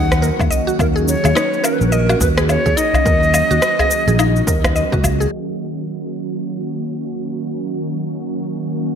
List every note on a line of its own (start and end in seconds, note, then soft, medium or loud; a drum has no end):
0.00 0.29 D#2 loud
0.00 5.28 D#3 medium
0.00 5.28 F#3 medium
0.00 5.28 A#3 medium
0.00 5.28 C#4 medium
0.00 0.10 D#4 loud
0.00 5.28 F#4 medium
0.00 0.47 F#5 loud
0.10 cross-stick medium
0.10 udu loud
0.10 shaker soft
0.22 0.38 A#4 medium
0.22 shaker soft
0.39 0.47 D#2 loud
0.39 kick loud
0.39 low woodblock medium
0.39 shaker soft
0.50 0.66 D#5 loud
0.50 udu medium
0.50 shaker medium
0.67 0.94 F#4 medium
0.67 shaker soft
0.79 1.14 D#2 loud
0.79 0.86 A#4 medium
0.79 kick loud
0.79 low woodblock medium
0.79 shaker soft
0.96 1.22 G#4 medium
0.96 shaker soft
1.08 1.66 C#5 loud
1.08 shaker medium
1.24 1.31 D#2 medium
1.24 1.34 G#4 medium
1.24 low woodblock medium
1.24 shaker soft
1.35 1.52 D#4 loud
1.35 cross-stick medium
1.35 shaker soft
1.53 shaker soft
1.64 1.80 A#4 medium
1.64 1.74 A#4 medium
1.64 low woodblock medium
1.64 shaker medium
1.73 1.83 B4 medium
1.81 2.14 A#1 loud
1.81 1.86 A#4 medium
1.81 shaker soft
1.87 1.94 B4 medium
1.92 2.20 A#4 loud
1.92 2.07 D#5 loud
1.92 shaker soft
2.09 2.36 F#4 medium
2.09 low woodblock medium
2.09 shaker soft
2.20 2.56 D#2 loud
2.20 2.27 B4 medium
2.20 kick loud
2.20 udu medium
2.20 shaker medium
2.37 2.64 G#4 medium
2.37 cross-stick medium
2.37 shaker soft
2.49 2.78 C#5 loud
2.49 low woodblock medium
2.49 shaker soft
2.66 2.73 D#2 loud
2.66 2.76 G#4 medium
2.66 kick medium
2.66 shaker soft
2.77 2.93 D#4 loud
2.77 4.75 D#5 loud
2.77 shaker medium
2.94 udu loud
2.94 low woodblock medium
2.94 shaker soft
3.06 3.41 D#2 loud
3.06 3.22 A#4 medium
3.06 kick loud
3.06 shaker soft
3.23 shaker soft
3.34 3.49 D#5 loud
3.34 low woodblock medium
3.34 shaker medium
3.51 3.58 D#2 medium
3.51 3.77 F#4 medium
3.51 shaker soft
3.62 cross-stick medium
3.62 shaker soft
3.79 4.06 G#4 medium
3.79 udu medium
3.79 low woodblock medium
3.79 shaker soft
3.91 shaker medium
4.07 4.40 A#1 loud
4.07 4.18 G#4 medium
4.07 shaker soft
4.19 4.35 D#4 medium
4.19 low woodblock medium
4.19 shaker soft
4.36 shaker soft
4.47 4.82 D#2 loud
4.47 4.63 A#4 medium
4.47 kick loud
4.47 shaker medium
4.64 cross-stick medium
4.64 udu loud
4.64 low woodblock medium
4.64 shaker soft
4.76 4.91 D#5 medium
4.76 shaker soft
4.92 5.25 C#2 medium
4.92 5.19 F#4 medium
4.92 kick loud
4.92 shaker soft
5.04 kick medium
5.04 udu medium
5.04 low woodblock medium
5.04 shaker medium
5.20 5.32 G#4 medium
5.20 shaker soft
5.32 8.95 D#3 medium
5.32 8.95 F#3 medium
5.32 8.95 A#3 medium
5.32 8.95 C#4 medium
5.32 8.95 F#4 medium
5.32 shaker soft
5.61 shaker medium
5.89 shaker soft
6.17 shaker medium
6.34 shaker soft
6.45 shaker soft
6.62 shaker soft
6.74 shaker medium
6.91 shaker soft
7.02 shaker soft
7.19 shaker soft
7.30 shaker medium
7.47 shaker soft
7.58 shaker soft
7.75 shaker soft
7.86 shaker medium
8.03 shaker soft
8.15 shaker soft
8.32 shaker soft
8.43 shaker medium
8.60 shaker soft
8.71 shaker soft
8.88 shaker soft